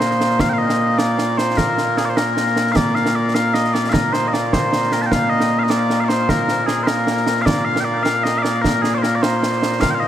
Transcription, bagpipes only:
Already playing: A#2 A#3 C5
0.40 F5
0.49 F5 G5
0.58 D#5
0.98 D5
1.38 C5
1.57 A#4
1.98 G#4
2.05 D5
2.09 C5
2.17 A#4
2.72 D5 F5
2.95 F5
3.16 D5
3.35 F5
3.54 D#5
3.74 D5
3.90 A#4 F5
4.13 C5
4.28 D#5
4.33 D5
4.53 C5
4.93 A#4
5.02 A5
5.06 G5
5.12 F5
5.30 D#5
5.59 F5
5.63 D#5
5.70 D5
6.00 F5
6.04 D5
6.08 C5
6.29 A#4
6.66 G#4
6.83 A#4 C5
7.42 D5 F5
7.65 F5
7.80 G5
7.85 D5
8.03 F5
8.24 D#5
8.38 F5
8.43 D5
8.62 A#4
8.82 G#4
8.94 C5 D5
9.02 A#4
9.15 D5
9.22 C5
9.81 F5
9.90 G5
9.94 F5
10.00 D#5

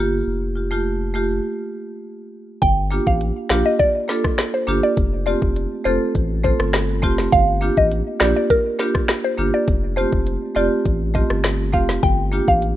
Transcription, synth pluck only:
2.62 G5
3.07 F5
3.50 F5
3.66 D#5
3.79 D5
4.54 C5
4.83 D5
5.27 D5
5.85 C5
6.44 C5
7.32 F5
7.77 D#5
8.21 D5
8.36 D5
8.50 A#4
9.24 C5
9.54 D5
9.97 C5
10.56 D5
11.15 D#5
11.74 F5
12.03 G5
12.48 F5

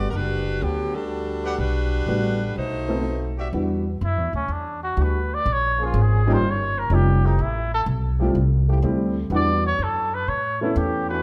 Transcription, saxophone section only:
0.10 A#4
0.16 G3 D4 F#4 B4
0.63 D3 F#3 B3 G4
0.95 G3 D4 F#4 A4
1.60 G3 D4 F#4 B4
2.58 A3 D#4 F#4 C5

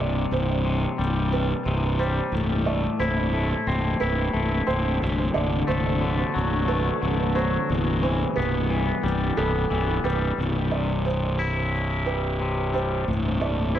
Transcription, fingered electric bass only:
Already playing: C1
0.31 C1
0.99 C1
1.66 C1
2.32 C1
2.99 C1
3.67 C1
4.01 C1
4.34 C1
4.68 C1
5.02 C1
5.35 C1
5.69 C1
6.36 C1
7.02 C1
7.70 C1
8.37 C1
9.03 C1
9.37 C1
9.71 C1
10.04 C1
10.38 C1
13.08 C1

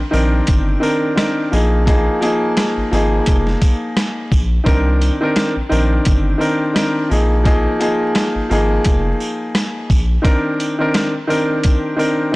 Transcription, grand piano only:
0.11 D#3 C4 D4 A#4
0.80 D#3 C4 D4 A#4
1.16 D#3 C4 D4 A#4
1.51 F3 A#3 D#4 G#4
1.85 F3 A#3 D#4 G#4
2.21 F3 A#3 D#4 G#4
2.91 F3 A#3 D#4 G#4
4.64 D#3 C4 D4 A#4
5.21 D#3 C4 D4 A#4
5.69 D#3 C4 D4 A#4
6.38 D#3 C4 D4 A#4
6.74 D#3 C4 D4 A#4
7.09 F3 A#3 D#4 G#4
7.43 F3 A#3 D#4 G#4
7.79 F3 A#3 D#4 G#4
8.49 F3 A#3 D#4 G#4
10.22 D#3 C4 D4 A#4
10.78 D#3 C4 D4 A#4
11.27 D#3 C4 D4 A#4
11.96 D#3 C4 D4 A#4
12.32 D#3

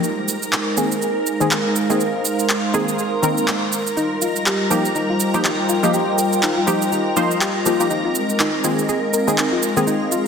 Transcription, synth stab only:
0.77 D#3 A#3 C4 G#4
1.40 D#3 A#3 C4 G#4
1.89 D#3 A#3 C4 G#4
2.74 D#3 A#3 C4 G#4
3.22 D#3 A#3 C4 A#4
4.70 F3 A#3 D#4 G4
5.34 F3 A#3 D#4 G4
5.83 F3 A#3 D#4 G4
6.67 F3 A#3 D#4 G4
7.16 F3 A#3 D#4 C5
7.65 F3 A#3 D#4 G4
7.80 F3 A#3 D#4 G4
8.64 D#3 A#3 C4 G#4
9.27 D#3 A#3 C4 G#4
9.76 D#3 A#3 C4 G#4

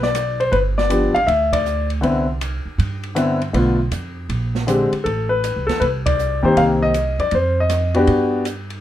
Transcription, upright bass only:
Already playing: B1
0.52 G1
1.14 G#1
1.28 D2
2.03 C2
2.65 muted upright bass stroke
2.78 G2
3.54 B1
3.91 F2
4.29 A#1
4.93 muted upright bass stroke
5.05 A1
5.56 C2
5.68 E2
5.81 C2
6.44 G2
6.57 C2
7.19 F#2
7.32 F2
8.08 G2

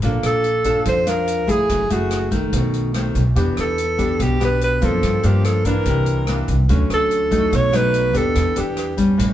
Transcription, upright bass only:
0.02 A#1
0.23 A#1
0.86 F2
1.49 A#1
1.70 F#1
1.90 F#1
2.53 B1
3.15 B1
3.36 E2
3.58 E2
4.20 B1
4.82 F#2
5.03 G2
5.24 G2
5.86 C2
6.48 C2
6.69 D2
6.90 D2
7.52 B1
8.15 D#2
8.36 E2
8.58 E2
9.20 A1

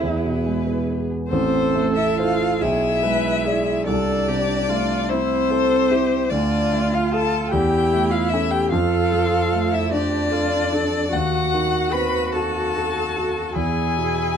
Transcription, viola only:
0.01 G#4
1.30 A4
2.61 G#4
3.03 B4
3.45 G#4
3.86 A4
4.28 G4
4.70 F4
5.10 E4
5.50 A4
5.92 G4
6.31 F4
7.52 E4
8.72 A4
9.91 G4
10.33 F4
10.73 A4
11.12 F#4
13.55 E4

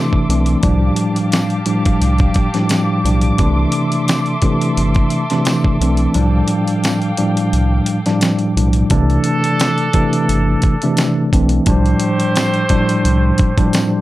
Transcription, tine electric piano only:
Already playing: C3 E3 A3 D4
0.29 E3 A3 C4 D4
0.63 A2 F3 G3 D4
1.66 A2 F3 G3 D4
2.54 A2 F3 G3 D4
3.04 A2 F3 G3 D4
3.38 C3 E3 A3 D4
4.42 C3 E3 A3 D4
5.31 C3 E3 A3 D4
5.81 E3 A3 C4 D4
6.15 A2 F3 G3 D4
7.18 A2 F3 G3 D4
8.06 A2 F3 G3 D4
8.57 A2 F3 G3 D4
8.90 C3 E3 A3 D4
9.94 C3 E3 A3 D4
10.83 C3 E3 A3 D4
11.33 E3 A3 C4 D4
11.67 A2 F3 G3 D4
12.70 A2 F3 G3 D4
13.58 A2 F3 G3 D4

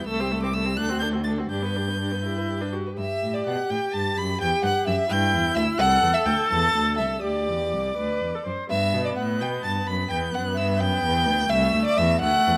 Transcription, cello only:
0.07 C2
0.77 D2
1.50 G2
2.98 G2
3.22 A2
3.46 B2
3.70 A2
3.94 G2
4.18 F#2
4.41 E2
4.63 G2
4.87 F#2
5.10 G2
5.34 E2
5.56 D2
5.79 C2
6.02 E2
6.26 D2
6.50 E2
6.74 D2
6.98 C2
7.23 D2
7.48 E2
7.73 C2
7.97 D2
8.21 E2
8.46 F#2
8.69 G2
8.93 B2
9.18 A2
9.41 B2
9.65 G2
9.88 F#2
10.11 E2
10.35 F#2
10.57 G2
10.80 F#2
11.03 E2
11.27 D2
11.50 C2
11.74 D2
11.97 E2
12.22 D2
12.47 E2

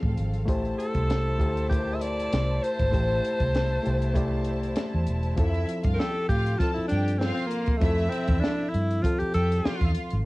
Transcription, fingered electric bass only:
0.03 A2
0.18 G#1
0.49 A1
0.96 C2
1.40 D2
2.33 C2
2.80 G#1
2.94 A1
3.41 C2
3.87 C2
4.94 E2
5.08 E1
5.38 F2
5.85 G2
6.29 A2
6.78 muted fingered electric bass stroke
6.92 G2
7.82 F2
8.29 E2
8.75 G2
9.22 muted fingered electric bass stroke
9.35 F2
9.66 muted fingered electric bass stroke
9.81 E2
10.13 G#1

